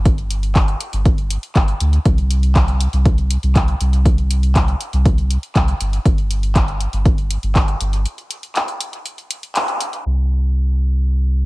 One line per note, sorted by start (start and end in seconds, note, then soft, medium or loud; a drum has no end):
0.00 0.75 G1 medium
0.05 kick loud
0.05 closed hi-hat soft
0.18 closed hi-hat soft
0.31 closed hi-hat medium
0.43 closed hi-hat soft
0.56 kick loud
0.56 clap medium
0.56 closed hi-hat soft
0.68 closed hi-hat soft
0.81 closed hi-hat medium
0.93 1.37 G1 medium
0.93 closed hi-hat soft
1.05 kick loud
1.05 closed hi-hat soft
1.18 closed hi-hat soft
1.30 closed hi-hat medium
1.43 closed hi-hat soft
1.56 1.74 G1 medium
1.56 kick loud
1.56 clap medium
1.56 closed hi-hat soft
1.68 closed hi-hat soft
1.80 1.98 D2 medium
1.80 closed hi-hat medium
1.93 closed hi-hat soft
2.05 2.87 C2 loud
2.05 kick loud
2.05 closed hi-hat soft
2.18 closed hi-hat soft
2.31 closed hi-hat medium
2.43 closed hi-hat soft
2.56 kick loud
2.56 clap medium
2.56 closed hi-hat soft
2.68 closed hi-hat soft
2.81 closed hi-hat medium
2.93 3.37 C2 medium
2.93 closed hi-hat soft
3.06 kick loud
3.06 closed hi-hat soft
3.18 closed hi-hat soft
3.31 closed hi-hat medium
3.43 3.75 C2 medium
3.43 closed hi-hat soft
3.56 kick loud
3.56 clap medium
3.56 closed hi-hat soft
3.68 closed hi-hat soft
3.81 4.75 C2 loud
3.81 closed hi-hat medium
3.93 closed hi-hat soft
4.06 kick loud
4.06 closed hi-hat soft
4.18 closed hi-hat soft
4.31 closed hi-hat medium
4.43 closed hi-hat soft
4.55 kick loud
4.55 clap medium
4.55 closed hi-hat soft
4.68 closed hi-hat soft
4.81 closed hi-hat medium
4.93 5.37 C2 medium
4.93 closed hi-hat soft
5.05 kick loud
5.05 closed hi-hat soft
5.18 closed hi-hat soft
5.31 closed hi-hat medium
5.43 closed hi-hat soft
5.56 5.74 C2 medium
5.56 kick loud
5.56 clap medium
5.56 closed hi-hat soft
5.68 closed hi-hat soft
5.81 5.99 G1 medium
5.81 closed hi-hat medium
5.93 closed hi-hat soft
6.05 6.87 G1 loud
6.05 kick loud
6.05 closed hi-hat soft
6.18 closed hi-hat soft
6.31 closed hi-hat medium
6.43 closed hi-hat soft
6.55 kick loud
6.55 clap medium
6.55 closed hi-hat soft
6.68 closed hi-hat soft
6.81 closed hi-hat medium
6.93 7.37 G1 medium
6.93 closed hi-hat soft
7.05 kick loud
7.05 closed hi-hat soft
7.18 closed hi-hat soft
7.31 closed hi-hat medium
7.43 7.75 G1 medium
7.43 closed hi-hat soft
7.55 kick loud
7.55 clap medium
7.55 closed hi-hat soft
7.68 closed hi-hat soft
7.81 8.05 G1 loud
7.81 closed hi-hat medium
7.93 closed hi-hat soft
8.06 closed hi-hat soft
8.18 closed hi-hat soft
8.31 closed hi-hat medium
8.43 closed hi-hat soft
8.56 clap medium
8.56 closed hi-hat soft
8.68 closed hi-hat soft
8.81 closed hi-hat medium
8.93 closed hi-hat soft
9.06 closed hi-hat soft
9.18 closed hi-hat soft
9.31 closed hi-hat medium
9.43 closed hi-hat soft
9.56 clap medium
9.56 closed hi-hat soft
9.68 closed hi-hat soft
9.81 closed hi-hat medium
9.93 closed hi-hat soft
10.06 11.46 C2 medium